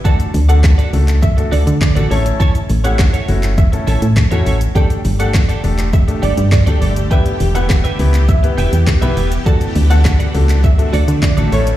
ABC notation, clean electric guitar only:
X:1
M:4/4
L:1/16
Q:1/4=102
K:D
V:1 name="Clean electric guitar"
[FAd] z2 [FAd] z [FAd] z4 [FAd] z2 [FAd] [EAc] z | [EAc] z2 [EAc] z [EAc] z4 [EAc] z2 [EAc] [EAc] z | [GAd] z2 [GAd] z [GAd] z4 [GAd] z2 [GAd] [GAd] z | [GBe] z2 [GBe] z [GBe] z4 [GBe] z2 [GBe] [GBe] z |
[FAd] z2 [FAd] z [FAd] z4 [FAd] z2 [FAd] [EAc] z |]